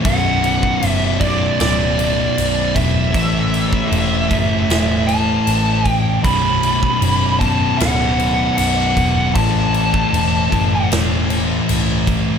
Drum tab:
CC |x-x-x-x-x-x-x-x-|x-x-x-x-x-x-x-x-|x-x-x-x-x-x-x-x-|x-x-x-x-x-x-x-x-|
SD |--------o-------|--------o-------|--------o-------|--------o-------|
BD |o--o--o-------o-|o--o--o-------o-|o--o--o-------o-|o--o--o-------o-|